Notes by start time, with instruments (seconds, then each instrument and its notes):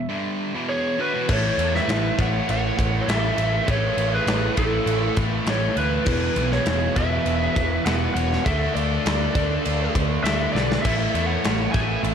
Already playing: lead electric guitar E5
0.09 overdriven electric guitar G2 D3 G3
0.55 overdriven electric guitar E2 B2 E3
0.69 lead electric guitar G#4 C#5
0.98 overdriven electric guitar D3 A3, lead electric guitar F#4 B4
1.13 overdriven electric guitar E2 B2
1.29 picked electric bass A1, overdriven electric guitar A2 E3 A3, lead electric guitar A4 C#5, kick, crash
1.58 picked electric bass E2, overdriven electric guitar A2 E3 A3, ride
1.75 lead electric guitar B4 E5, snare
1.88 picked electric bass A1, overdriven electric guitar A2 E3 A3, snare, ride
2.18 picked electric bass A1, overdriven electric guitar A2 E3 A3, lead electric guitar C#5 F#5, kick, ride
2.48 picked electric bass A1, overdriven electric guitar A2 E3 A3, lead electric guitar C#5 F#5, ride
2.77 picked electric bass A1, overdriven electric guitar A2 E3 A3, kick, ride
3.01 lead electric guitar A4 C#5
3.07 picked electric bass A1, overdriven electric guitar A2 E3 A3, lead electric guitar E5, snare, ride
3.12 lead electric guitar A4
3.37 picked electric bass A1, overdriven electric guitar A2 E3 A3, ride
3.67 picked electric bass A1, overdriven electric guitar A2 E3 A3, lead electric guitar A4 C#5, kick, ride
3.96 picked electric bass A1, overdriven electric guitar A2 E3 A3, ride
4.14 lead electric guitar G#4 B4
4.26 picked electric bass A1, overdriven electric guitar A2 E3 A3, snare, ride
4.56 picked electric bass A1, overdriven electric guitar A2 E3 A3, lead electric guitar E4 A4, kick, ride
4.86 picked electric bass A1, overdriven electric guitar A2 E3 A3, ride
5.16 picked electric bass A1, overdriven electric guitar A2 E3 A3, kick, ride
5.46 picked electric bass A1, overdriven electric guitar A2 E3 A3, lead electric guitar A4 C#5, snare, ride
5.76 picked electric bass D2, overdriven electric guitar A2 E3 A3, lead electric guitar E4 B4, ride
6.06 picked electric bass E1, overdriven electric guitar E2 B2 E3, kick, crash
6.36 picked electric bass B1, overdriven electric guitar E2 B2 E3, ride
6.52 lead electric guitar G#4 C#5, snare
6.66 picked electric bass E1, overdriven electric guitar E2 B2 E3, snare, ride
6.95 picked electric bass E1, overdriven electric guitar E2 B2 E3, lead electric guitar B4 E5, kick, ride
7.25 picked electric bass E1, overdriven electric guitar E2 B2 E3, ride
7.55 picked electric bass E1, overdriven electric guitar E2 B2 E3, kick, ride
7.86 picked electric bass E1, overdriven electric guitar E2 B2 E3, lead electric guitar B4 F#5, snare, ride
8.14 picked electric bass E1, overdriven electric guitar E2 B2 E3, lead electric guitar C#5 F#5, ride
8.33 snare
8.45 picked electric bass D2, overdriven electric guitar D3 A3 D4, lead electric guitar A4 E5, kick, ride
8.75 picked electric bass D2, overdriven electric guitar D3 A3 D4, lead electric guitar A4 D5, ride
9.05 picked electric bass D2, overdriven electric guitar D3 A3 D4, snare, ride
9.35 picked electric bass D2, overdriven electric guitar D3 A3 D4, kick, ride
9.64 picked electric bass D2, overdriven electric guitar D3 A3 D4, ride
9.95 picked electric bass D2, overdriven electric guitar D3 A3 D4, kick, ride
10.24 picked electric bass D2, overdriven electric guitar D3 A3 D4, lead electric guitar A4 E5, snare, ride
10.52 picked electric bass B1, overdriven electric guitar D3 A3 D4, lead electric guitar B4 D5
10.56 snare
10.72 snare
10.82 picked electric bass A1, overdriven electric guitar A2 E3 A3, lead electric guitar A4 E5, kick, crash, ride
11.14 picked electric bass E2, overdriven electric guitar A2 E3 A3, ride
11.26 lead electric guitar C#5 F#5
11.44 picked electric bass A1, overdriven electric guitar A2 E3 A3, snare, ride
11.72 picked electric bass A1, overdriven electric guitar A2 E3 A3, lead electric guitar E5 G#5, kick, ride
11.77 overdriven electric guitar A2
12.03 picked electric bass A1, overdriven electric guitar A2 E3 A3, ride